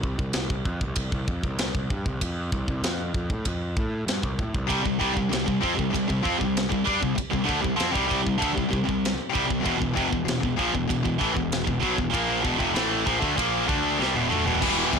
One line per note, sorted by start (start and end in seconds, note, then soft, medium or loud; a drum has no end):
0.03 0.18 C2 loud
0.03 kick medium
0.19 0.33 C2 medium
0.19 kick medium
0.33 0.49 C2 medium
0.33 snare loud
0.33 ride bell medium
0.50 0.64 C2 medium
0.50 kick medium
0.65 0.80 F2 loud
0.65 kick medium
0.81 0.96 C2 medium
0.81 kick medium
0.96 1.11 C2 medium
0.96 kick medium
0.96 ride bell medium
1.12 1.27 C2 medium
1.12 kick medium
1.28 1.42 F2 loud
1.28 kick medium
1.43 1.72 C2 medium
1.43 kick medium
1.59 snare loud
1.59 ride bell medium
1.75 1.89 C2 medium
1.75 kick medium
1.90 2.04 G2 medium
1.90 kick medium
2.06 2.20 C2 medium
2.06 kick medium
2.21 2.50 F2 medium
2.21 kick medium
2.21 ride bell medium
2.52 2.66 C2 medium
2.52 kick loud
2.68 2.82 C2 medium
2.68 kick medium
2.82 3.11 F2 medium
2.82 snare loud
2.82 ride bell medium
3.14 3.29 F2 medium
3.14 kick medium
3.30 3.44 A2 medium
3.30 kick medium
3.45 3.74 F2 medium
3.45 kick medium
3.45 ride bell medium
3.77 4.05 A2 loud
3.77 kick loud
4.06 4.21 G2 medium
4.06 snare loud
4.06 ride bell medium
4.23 4.37 C2 loud
4.23 kick loud
4.39 4.53 A2 medium
4.39 kick medium
4.54 4.68 C2 loud
4.54 kick medium
4.67 4.84 C2 medium
4.67 4.82 C3 medium
4.67 4.82 G3 loud
4.67 kick medium
4.67 ride bell medium
4.83 5.00 C2 medium
4.83 4.98 C3 medium
4.83 4.98 G3 medium
4.83 kick medium
4.99 5.15 C2 medium
4.99 5.12 C3 medium
4.99 5.13 G3 loud
4.99 kick medium
5.14 5.30 C2 medium
5.14 5.28 C3 medium
5.14 5.29 G3 medium
5.14 kick medium
5.29 5.46 C2 medium
5.29 5.43 C3 medium
5.29 5.44 G3 medium
5.29 ride bell medium
5.33 snare loud
5.44 5.62 C2 medium
5.44 5.60 C3 medium
5.44 5.60 G3 medium
5.44 kick medium
5.61 5.78 F2 loud
5.61 5.74 F3 medium
5.61 5.74 C4 loud
5.61 kick medium
5.74 5.89 C3 medium
5.74 5.90 G3 medium
5.79 5.93 C2 medium
5.79 kick medium
5.90 6.07 C3 medium
5.90 6.07 G3 medium
5.94 6.08 C2 medium
5.94 kick medium
5.94 ride bell medium
6.08 6.24 C2 medium
6.08 6.22 C3 medium
6.08 6.23 G3 medium
6.08 kick medium
6.22 6.39 F2 loud
6.22 6.38 F3 medium
6.22 6.38 C4 loud
6.22 kick medium
6.38 6.69 C2 medium
6.38 6.64 C3 medium
6.38 6.64 G3 medium
6.38 kick medium
6.57 snare loud
6.57 ride bell medium
6.69 6.86 C2 medium
6.69 6.85 C3 medium
6.69 6.84 G3 medium
6.69 kick loud
6.85 7.01 G2 medium
6.85 6.99 G3 medium
6.85 7.01 D4 loud
6.85 kick medium
7.00 7.17 C2 medium
7.00 7.15 C3 medium
7.00 7.17 G3 medium
7.00 kick medium
7.16 muted distorted electric guitar stroke medium
7.16 muted picked electric bass stroke soft
7.16 kick medium
7.16 ride bell medium
7.31 7.48 C2 medium
7.31 7.45 C3 medium
7.31 7.46 G3 medium
7.31 kick medium
7.45 7.63 D2 medium
7.45 7.61 D3 medium
7.45 7.61 A3 loud
7.45 kick medium
7.61 7.79 C2 medium
7.61 7.76 C3 medium
7.61 7.76 G3 medium
7.61 kick medium
7.76 7.91 F3 medium
7.76 7.92 C4 loud
7.76 ride bell medium
7.81 7.95 F2 medium
7.81 snare loud
7.91 8.05 C3 medium
7.91 8.06 G3 medium
7.95 8.09 C2 medium
7.95 kick loud
8.07 8.21 C3 medium
8.07 8.21 G3 medium
8.11 8.25 C2 loud
8.11 kick medium
8.22 8.37 C3 medium
8.22 8.38 G3 medium
8.27 8.41 C2 medium
8.27 kick medium
8.38 8.53 D3 medium
8.38 8.53 A3 loud
8.42 8.56 D2 loud
8.42 kick loud
8.42 ride bell medium
8.54 8.68 C3 medium
8.54 8.68 G3 medium
8.54 kick medium
8.58 8.72 C2 medium
8.69 8.83 C3 medium
8.69 8.83 G3 medium
8.73 8.87 C2 medium
8.73 kick medium
8.84 9.11 C3 medium
8.84 9.11 G3 medium
8.89 9.17 C2 medium
8.89 kick medium
9.05 snare loud
9.05 ride bell medium
9.30 9.45 C3 medium
9.30 9.46 G3 loud
9.35 9.49 C2 medium
9.35 kick loud
9.46 9.61 C3 medium
9.46 9.64 G3 medium
9.50 9.64 C2 medium
9.50 kick medium
9.60 9.75 E2 loud
9.60 9.76 B2 loud
9.65 9.80 E1 medium
9.65 9.79 E2 medium
9.65 9.79 B2 medium
9.65 kick medium
9.65 ride bell medium
9.77 9.93 E2 medium
9.77 9.94 B2 medium
9.82 9.96 E1 medium
9.82 kick medium
9.93 10.09 F2 loud
9.93 10.09 C3 loud
9.93 kick medium
9.97 10.11 F1 medium
10.09 10.27 E1 medium
10.09 10.24 E2 medium
10.09 10.24 B2 medium
10.09 kick medium
10.25 10.42 E1 medium
10.25 10.39 E2 medium
10.25 10.39 B2 medium
10.25 ride bell medium
10.29 10.44 E2 medium
10.29 snare loud
10.40 10.58 E1 medium
10.40 10.57 E2 medium
10.40 10.56 B2 medium
10.40 kick medium
10.45 10.60 E2 medium
10.45 10.58 B2 medium
10.56 10.73 A#1 medium
10.56 10.72 A#2 medium
10.56 10.72 F3 medium
10.56 kick medium
10.73 10.89 E1 medium
10.73 10.86 E2 medium
10.73 10.86 B2 medium
10.73 kick medium
10.87 11.04 E1 medium
10.87 11.02 E2 medium
10.87 11.03 B2 medium
10.87 kick medium
10.87 ride bell medium
11.03 11.20 E1 medium
11.03 11.19 E2 medium
11.03 11.19 B2 medium
11.03 kick medium
11.20 11.35 A1 loud
11.20 11.34 A2 medium
11.20 11.35 E3 medium
11.20 kick medium
11.35 11.65 E1 medium
11.35 11.60 E2 medium
11.35 11.60 B2 medium
11.35 kick medium
11.52 snare loud
11.52 ride bell medium
11.67 11.81 E1 medium
11.67 11.82 E2 medium
11.67 11.81 B2 medium
11.67 kick medium
11.82 11.97 B1 medium
11.82 11.97 B2 medium
11.82 11.98 F#3 loud
11.82 kick medium
11.98 12.13 E1 medium
11.98 12.14 E2 medium
11.98 12.13 B2 medium
11.98 kick medium
12.11 12.43 A#1 medium
12.11 12.43 A#2 medium
12.11 12.44 F3 loud
12.11 12.42 A#3 loud
12.11 kick medium
12.11 ride bell medium
12.15 12.44 A#3 loud
12.44 12.59 E1 medium
12.44 12.58 E2 loud
12.44 12.59 B2 loud
12.44 kick loud
12.58 12.75 F1 medium
12.58 12.74 F2 medium
12.58 12.74 C3 loud
12.58 kick medium
12.74 13.04 A1 medium
12.74 13.05 A2 medium
12.74 13.05 E3 loud
12.74 13.06 A3 loud
12.74 snare loud
12.74 ride bell medium
13.06 13.21 A#1 medium
13.06 13.19 A#2 medium
13.06 13.20 F3 medium
13.06 kick medium
13.19 13.37 D2 medium
13.19 13.35 D3 medium
13.19 13.35 A3 loud
13.19 kick medium
13.36 13.66 A#1 medium
13.36 13.66 A#2 medium
13.36 13.67 F3 loud
13.36 13.67 A#3 loud
13.36 kick medium
13.36 ride bell medium
13.66 13.97 D2 loud
13.66 13.97 D3 medium
13.66 13.98 A3 loud
13.66 13.98 D4 medium
13.66 kick loud
13.99 14.14 C2 medium
13.99 14.13 C3 medium
13.99 14.14 G3 medium
13.99 snare medium
14.15 14.29 E1 medium
14.15 14.29 E2 medium
14.15 14.29 B2 loud
14.15 high tom medium
14.29 14.45 D2 medium
14.29 14.44 D3 loud
14.29 14.45 A3 medium
14.29 mid tom loud
14.45 14.60 E1 loud
14.45 14.60 E2 medium
14.45 14.60 B2 loud
14.45 floor tom medium
14.60 14.82 E1 medium
14.60 14.90 E2 medium
14.60 14.90 B2 medium
14.60 14.69 E3 medium
14.60 14.69 G3 loud
14.60 kick loud
14.60 crash loud
14.60 crash medium
14.65 14.99 E3 loud
14.69 14.76 E3 medium
14.69 14.78 G3 medium
14.77 14.85 E3 medium
14.77 14.86 G3 medium
14.86 14.92 E3 medium
14.86 14.94 G3 medium
14.92 14.99 E2 medium
14.92 14.99 B2 medium
14.92 14.99 E3 medium
14.92 14.99 G3 medium
14.92 kick medium
14.92 crash medium